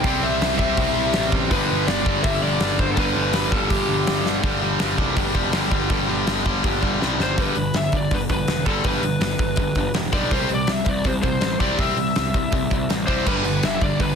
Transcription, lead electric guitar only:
Already playing: G5
0.23 E5
0.58 E5
1.52 B4
1.87 D5
2.24 E5
2.43 D5
2.79 C5
2.92 A4
2.99 B4
3.35 B4
3.53 A4
3.70 G4
7.23 C5
7.41 B4
7.76 E5
7.97 D5
8.14 B4
8.31 B4
8.67 A4
8.85 B4
10.14 D5
10.33 C5
10.54 D5
10.72 E5
10.89 D5
11.07 C5
11.23 C5
11.61 D5
11.80 E5
13.07 C5
13.28 B4
13.65 E5
13.83 D5
14.00 B4

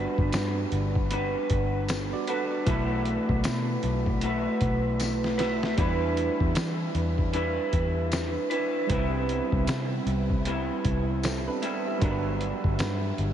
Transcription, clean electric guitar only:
Already playing: G3 B3 D4 F#4 B4
1.11 B3 D4 F#4 B4
2.28 D4 F#4 B4
2.66 B2 E3 A3 E4 F#4 B4
4.22 A3 E4 F#4 B4
5.38 A3 E4 F#4 B4
5.77 E3 G3 D4 E4 B4
7.33 G3 D4 E4 B4
8.50 D4 E4 B4
8.89 C3 G3 B3 E4
10.46 C3 G3 B3 E4
11.62 G3 B3 E4
12.01 G2 D3 F#3 B3 D4

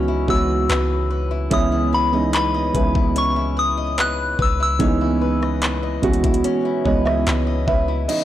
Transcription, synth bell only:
Already playing: C#6
0.30 E6
1.53 D#6
1.94 B5
2.35 B5
3.18 C#6
3.59 D#6
4.00 F#6
4.42 E6
4.63 E6

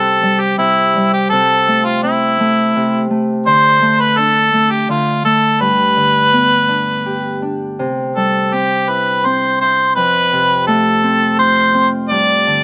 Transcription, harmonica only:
Already playing: A4
0.41 G4
0.59 E4
1.13 G4
1.30 A4
1.85 F4
2.03 E4
3.47 C5
4.00 B4
4.17 A4
4.71 G4
4.90 F4
5.25 A4
5.60 B4
8.16 A4
8.53 G4
8.89 B4
9.26 C5
9.61 C5
9.96 B4
10.67 A4
11.39 C5
12.09 D5

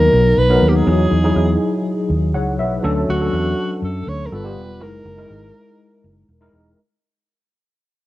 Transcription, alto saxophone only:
Already playing: A#4
0.39 B4
0.69 G4
0.76 G#4
3.10 F#4
3.84 A4
4.09 C#5
4.26 A#4
4.34 B4
4.83 A#4

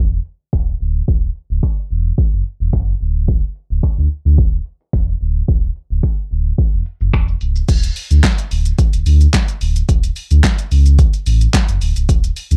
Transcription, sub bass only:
Already playing: E1
0.53 D1
0.80 D1
1.08 D1
1.50 D1
1.91 E1
2.33 F#1
2.60 E1
2.73 F#1
3.01 D1
3.70 D1
3.83 D2
3.98 D2
4.25 D2
4.38 D1
4.93 E1
5.21 D1
5.48 D1
5.90 D1
6.31 D1
6.73 E1
7.01 F#1
7.13 E1
7.41 C#1
7.69 D1
8.11 D2
8.51 D1
8.93 D1
9.06 D2
9.61 D1
9.89 D1
10.31 D2
10.71 C#2
11.26 A1
11.69 F#1
11.81 D1
11.96 C#1
12.09 D1
12.51 D2

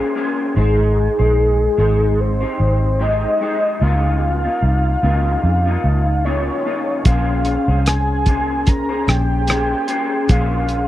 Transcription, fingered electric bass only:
0.57 G#1
1.19 A#1
1.78 G#1
2.60 G#1
3.82 C#2
4.62 C2
5.03 C#2
5.44 F2
5.84 C#2
7.05 A#1
7.68 C2
9.08 A#1
10.29 A#1

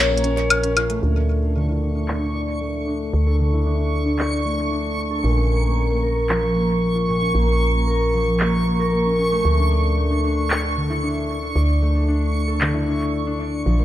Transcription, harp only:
Already playing: A#2 F3 A#3 C#4 F4 A#4
0.11 A#3
0.24 C#4
0.63 C#4
0.77 F4
0.90 A3
1.03 D4
1.42 A4
1.56 D3
1.69 E4
1.82 D4
1.95 D4
2.21 D4
2.34 D5
2.61 A3
2.87 D4
3.27 A4
3.40 D3
3.53 E4
3.66 D4
3.79 D4
4.06 D4
4.19 D5
4.45 A3
4.71 D4
5.11 A4
5.24 A#2
5.37 C#4
5.50 A#3
5.63 A#3
5.90 A#3
6.03 A#4
6.29 F3
6.56 A#3
6.95 F4
7.08 A#2
7.21 C#4
7.35 A#3
7.48 A#3
7.74 A#3
7.87 A#4
8.13 F3
8.40 A#3
8.66 A#3
8.79 A#4
8.92 A#3
9.05 C#4
9.19 C#4
9.32 A3
9.58 D4
9.71 D5
9.97 A3
10.11 D4
10.24 D4
10.63 A4
10.77 D3
10.90 E4
11.03 D4
11.42 D4
11.56 D5
11.82 A3
11.95 D4
12.08 D4
12.48 A4
12.61 D3
12.74 E4
12.87 D4
13.27 D4
13.40 D5
13.66 F3
13.79 A#3

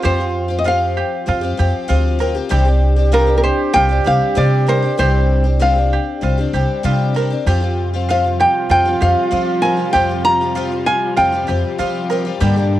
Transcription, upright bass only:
0.04 F2
1.28 F2
1.59 F2
1.90 D2
2.52 C2
3.75 C2
4.06 C2
4.37 C3
4.99 C2
6.22 C2
6.53 C2
6.84 C3
7.46 F2
8.70 F2
9.02 F2
9.32 F3
9.95 F2
11.18 F2
11.49 F2
11.79 F3
12.41 G2

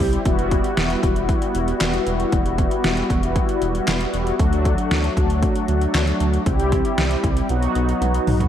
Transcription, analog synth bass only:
0.00 C2
0.26 E1
0.77 E1
1.03 E1
1.55 E1
1.81 E1
2.07 E1
2.32 E1
2.85 E1
3.10 E1
3.62 E1
3.88 E1
4.14 E1
4.40 D2
4.91 D2
5.17 D2
5.69 D2
5.95 D2
6.20 D2
6.46 C2
6.98 C2
7.24 C2
7.50 B1
7.76 B1
8.01 B1
8.27 B1

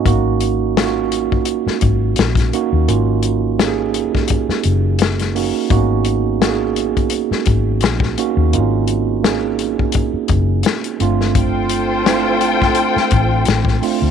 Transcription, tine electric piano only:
0.05 A#3 B3 D#4 F#4
0.12 C#4
0.77 A#3 C#4 D#4 F4
0.85 F#4
2.53 A#3 C#4 D#4 F#4
2.88 A#3 C#4 D#4 F4
3.59 A#3 C#4 D#4 G4
3.67 G#4
5.35 A#3 C#4 D#4 F#4
5.70 A#3 B3 D#4 F#4
5.77 C#4
6.41 A#3 C#4 D#4 F#4
6.49 G#4
8.17 A#3 C#4 D#4 F#4
8.53 A#3 C4 D#4 F4
8.60 C#4
9.23 A#3 C#4 D#4 G#4
11.00 A3 C4 D4 F4
12.06 A3 C4 D4 E4
12.14 F4
13.82 A3 C4 D4 F4

